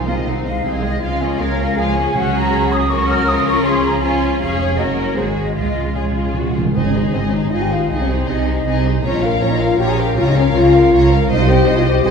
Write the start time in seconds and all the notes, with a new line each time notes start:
Already playing: C2 D#3 D#4 F4
0.08 G#3 C4 D#5 F5
0.27 C2 C4 D#4 C5 F#5
0.45 G#3 C4 D#5 F5
0.64 C2 C4 D#4 G#4 C5
0.83 G#3 C4 D#5
1.02 C#2 F3 G#3 C#4 F4 F5
1.21 C#4 G#4 C#5 D#5
1.39 C#2 F3 G#3 C#4 F4 A#4 C#5 F5
1.58 C#4 G#4 C#5 F5
1.77 C#2 F3 G#3 C#4 F4 G#4 F5 G#5
1.96 C#4 G#4 C#5
2.15 C#2 C#3 F#3 C#4 F#4 C#5 F#5
2.36 A#5
2.72 D#6
2.89 F#3 C#4 F#4 A#4 C#5 C#6
3.10 F6
3.27 F3 C#4 F4 C#5 D#6
3.47 C#6
3.65 G#4 C6
3.84 A#5
4.02 F3 C#4 F4 C#5 G#5
4.40 F1 G#3 C#4 G#4 C#5 F5
4.60 C#5
4.78 F#1 A#3 C#4 F#4 A#4 D#5
4.97 C#5
5.16 G#1 G#3 F#4 G#4 C5
5.36 D#5
5.55 C#2 C#3 G#3 F4 G#4 D#5
5.64 C#3
5.72 C#3
5.80 C#3
5.87 C#3
5.95 C#3 G#3 F4 G#4 C#5
6.03 C#3
6.11 C#3
6.16 C#3 F4
6.26 C#3
6.34 C#3 F#4
6.42 C#3
6.50 C#3
6.55 C#3 F4
6.66 C#3
6.75 G#1 G#2 C4 D#4 G#4 C5 D#5
6.85 C#4 C#5
6.93 D#4 G#4 C5 D#5
7.13 G#1 G#2 C4 D#4 G#4 C5 D#5
7.23 C#4 C#5
7.32 D#4 G#4 C5 D#5
7.51 G#1 G#2 D#4 F4 G#4 D#5 F5
7.61 G4 G5
7.70 D#4 F4 G#4 C5 F5
7.89 C2 C3 D#4 G#4 D#5
7.99 C#4 C#5
8.08 C4 D#4 G#4 C5
8.27 C2 C3 D#4 G#4 D#5
8.46 D#4 G#4 C5
8.66 C2 C3 D#4 G#4 D#5
8.84 D#4 G#4 C5
9.03 A#1 A#2 C#4 F4 C#5 A#5
9.13 D#4 D#5
9.22 F4 A#4 F5
9.41 A#1 A#2 C#4 F4 C#5 A#5
9.51 D#4 D#5
9.60 F4 A#4 F5
9.79 A#1 A#2 F4 G4 C#5 G5 A#5
9.89 G#4 G#5
9.97 G4 A#4 F5 G5
10.17 C#2 C#3 F4 C#5 F5 A#5
10.27 D#4 D#5
10.36 C#4 A#4 C#5 F5
10.55 C#2 C#3 F4 C#5 F5 A#5
10.74 A#4 F5
10.92 C#2 C#3 F4 C#5 A#5
11.11 A#4 F5
11.30 C2 C3 D#4 C5 D#5
11.39 F4 F5
11.48 G4 C5 D#5 G5
11.66 C2 C3 D#4 C5 D#5
11.76 F4 F5
11.85 G4 C5 D#5 G5
12.04 C2 C3 G#4 C5 D#5 G#5